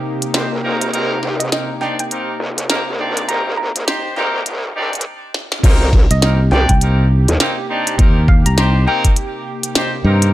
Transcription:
Already playing: analog synth pad C3 A#3 D#4 G4, synth pluck G5
0.22 closed hi-hat
0.34 wobble bass C2, horn section C4 D#4 G4 C5, snare, closed hi-hat
0.51 wobble bass A#1
0.63 wobble bass C2, horn section A#3 C4 D#4 G4 A#4
0.81 closed hi-hat
0.93 wobble bass C2, horn section A#3 C4 D#4 G4 A#4, closed hi-hat
1.22 wobble bass G2, snare
1.40 synth pluck D#5, closed hi-hat
1.52 horn section A#3 C4 D#4 G4 A#4, synth pluck D#5, snare, closed hi-hat
1.81 horn section C4 D4 D#4 G4 D5, synth pluck G5, snare
1.99 synth pluck G5, closed hi-hat
2.11 horn section A#3 C4 D#4 G4 A#4, closed hi-hat
2.40 wobble bass D#2
2.58 closed hi-hat
2.69 horn section A#3 C4 D#4 G4 A#4, snare, closed hi-hat
2.87 wobble bass C2
2.99 horn section C4 D4 D#4 G4 D5
3.17 closed hi-hat
3.28 horn section A#3 C4 D#4 G4 A#4, synth pluck A#5, closed hi-hat
3.46 wobble bass C2
3.57 synth pluck A#5
3.75 wobble bass C2, closed hi-hat
3.87 horn section C4 D#4 G4 C5, snare, closed hi-hat
4.16 wobble bass C2, horn section A#3 C4 D#4 G4 A#4, snare
4.46 wobble bass C2, closed hi-hat
4.75 wobble bass A#1, horn section C4 D4 D#4 G4 D5
4.93 closed hi-hat
4.95 closed hi-hat
5.01 closed hi-hat
5.34 snare
5.52 snare
5.63 wobble bass C2, analog synth pad C3 A#3 D#4 G4, horn section A#3 C4 D#4 G4 A#4, kick, closed hi-hat, crash
5.93 kick, snare
6.11 fingered electric bass C2, synth pluck D#5, closed hi-hat
6.22 horn section A#3 C4 D#4 G4 A#4, synth pluck D#5, snare, closed hi-hat
6.52 wobble bass C2, horn section C4 D4 D#4 G4 D5, synth pluck G5, snare
6.69 fingered electric bass C2, synth pluck G5, kick, closed hi-hat
6.81 horn section A#3 C4 D#4 G4 A#4, closed hi-hat
7.28 wobble bass D#2, closed hi-hat
7.40 horn section A#3 C4 D#4 G4 A#4, snare, closed hi-hat
7.69 horn section C4 D4 D#4 G4 D5
7.87 closed hi-hat
7.98 fingered electric bass D#2, horn section A#3 C4 D#4 G4 A#4, kick, closed hi-hat
8.28 synth pluck F5, kick
8.46 fingered electric bass C2, synth pluck A#5, closed hi-hat
8.57 horn section C4 D#4 G4 C5, synth pluck A#5, snare, closed hi-hat
8.87 horn section A#3 C4 D#4 G4 A#4, synth pluck G5
9.05 kick, closed hi-hat
9.16 closed hi-hat
9.63 closed hi-hat
9.75 horn section C4 D#4 G4 C5, snare, closed hi-hat
10.04 fingered electric bass G2, horn section A#3 C4 D#4 G4 A#4
10.22 closed hi-hat

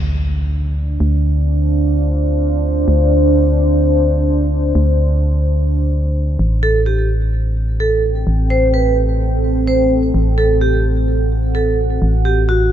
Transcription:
Already playing: fm bass D2, ambient pad D4 C5, impact
0.52 ambient pad F5
1.00 fm bass D2
2.88 fm bass D2
4.75 fm bass D2
6.39 fm bass A1, ambient pad C4
6.63 vibraphone A4
6.85 vibraphone G4, ambient pad A4
7.23 ambient pad G5
7.80 vibraphone A4
8.27 fm bass A1
8.50 vibraphone C5
8.74 vibraphone B4
9.67 vibraphone C5
10.14 fm bass A1
10.38 vibraphone A4
10.53 ambient pad F#5
10.61 vibraphone G4
11.55 vibraphone A4
12.02 fm bass A1
12.25 vibraphone G4
12.49 vibraphone F#4

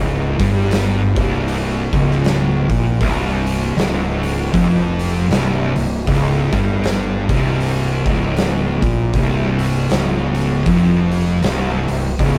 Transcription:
Already playing: fingered electric bass C#1, distorted electric guitar C#2
0.38 fingered electric bass G1, distorted electric guitar G2, kick, open hi-hat
0.71 snare, open hi-hat
1.15 fingered electric bass C1, distorted electric guitar C2, kick, open hi-hat
1.48 open hi-hat
1.92 fingered electric bass C#1, distorted electric guitar C#2, kick, open hi-hat
2.11 snare
2.24 snare, open hi-hat
2.70 fingered electric bass A#1, distorted electric guitar A#2, kick, open hi-hat
3.00 fingered electric bass C1, distorted electric guitar C2, kick, open hi-hat
3.47 open hi-hat
3.76 fingered electric bass C#1, distorted electric guitar C#2, snare, open hi-hat
4.23 open hi-hat
4.53 fingered electric bass F1, distorted electric guitar F2, kick, open hi-hat
4.99 open hi-hat
5.30 fingered electric bass C1, distorted electric guitar C2, snare, open hi-hat
5.76 fingered electric bass C1, distorted electric guitar C2, open hi-hat
6.07 fingered electric bass C#1, distorted electric guitar C#2, kick, open hi-hat
6.53 fingered electric bass G1, distorted electric guitar G2, kick, open hi-hat
6.84 snare, open hi-hat
7.29 fingered electric bass C1, distorted electric guitar C2, kick, open hi-hat
7.60 open hi-hat
8.05 fingered electric bass C#1, distorted electric guitar C#2, kick, open hi-hat
8.37 snare, open hi-hat
8.82 fingered electric bass A#1, distorted electric guitar A#2, kick, open hi-hat
9.13 fingered electric bass C1, distorted electric guitar C2, kick, open hi-hat
9.59 open hi-hat
9.90 fingered electric bass C#1, distorted electric guitar C#2, snare, open hi-hat
10.35 open hi-hat
10.65 fingered electric bass F1, distorted electric guitar F2, kick, open hi-hat
11.11 open hi-hat
11.42 fingered electric bass C1, distorted electric guitar C2, snare, open hi-hat
11.88 fingered electric bass C1, distorted electric guitar C2, open hi-hat
12.18 fingered electric bass C#1, distorted electric guitar C#2, kick, open hi-hat

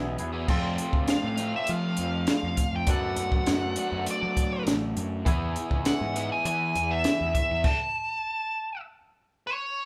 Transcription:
Already playing: picked electric bass B1, clean electric guitar E3 F#3 B3 E4 G#4
0.18 picked electric bass E2, clean electric guitar F#3 B3 E4 G#4, closed hi-hat
0.33 overdriven electric guitar E3 B3 E4 G#4
0.47 picked electric bass F2, overdriven electric guitar F3 A3 C4 F4, clean electric guitar A4, kick, crash
0.78 closed hi-hat
0.93 picked electric bass D2, kick
1.08 lead electric guitar F5, snare, closed hi-hat
1.24 picked electric bass A2
1.37 overdriven electric guitar F3 A3 C4 F4, closed hi-hat
1.56 lead electric guitar E5
1.67 picked electric bass F3, lead electric guitar F5, closed hi-hat
1.97 picked electric bass F2, closed hi-hat
2.27 lead electric guitar F5, snare, closed hi-hat
2.43 picked electric bass F2
2.57 kick, closed hi-hat
2.73 picked electric bass F2, lead electric guitar G5
2.87 picked electric bass F#2, overdriven electric guitar F#3 A3 D4 F#4, clean electric guitar B3 A4, kick, closed hi-hat
2.91 lead electric guitar F#5
3.16 picked electric bass F#2, closed hi-hat
3.32 kick
3.46 picked electric bass F#2, snare, closed hi-hat
3.76 overdriven electric guitar F#3 A3 D4 F#4, closed hi-hat
3.92 picked electric bass F#2
4.06 closed hi-hat
4.11 lead electric guitar D5
4.23 picked electric bass F#3
4.37 kick, closed hi-hat
4.67 picked electric bass A1, snare, closed hi-hat
4.97 picked electric bass F#2, closed hi-hat
5.25 picked electric bass E2, overdriven electric guitar E3 B3 E4 G#4, kick, closed hi-hat
5.56 closed hi-hat
5.71 picked electric bass C#2, kick
5.85 lead electric guitar F#5, snare, closed hi-hat
6.01 picked electric bass G#2
6.15 overdriven electric guitar E3 B3 E4 G#4, closed hi-hat
6.32 lead electric guitar G#5
6.45 picked electric bass E3, lead electric guitar G#5, closed hi-hat
6.75 picked electric bass E2, closed hi-hat
6.91 lead electric guitar E5
7.04 snare, closed hi-hat
7.21 picked electric bass E2
7.35 lead electric guitar E5, kick, closed hi-hat
7.51 picked electric bass E2
7.64 lead electric guitar A5, kick, crash
9.47 lead electric guitar C#5

